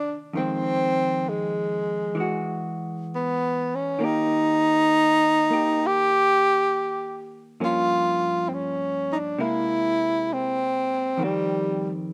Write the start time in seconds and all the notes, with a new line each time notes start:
Already playing: C3 D#3 A#3 D4
0.33 F2 D#3 G#3 C4
0.39 C4
1.29 G#3
2.15 E3 G#3
2.20 F#4
3.15 B3
3.75 C#4
3.99 D#3 A#3
4.04 D#4 G4
5.50 A#3 G4
5.86 G4
7.60 G2 F3 A#3 C#4
7.65 F4
8.49 C4
8.54 C#4
9.13 D4 D#4
9.39 C3 G#3 A#3 E4
10.33 C4
11.17 F2 D#3
11.23 G3 C4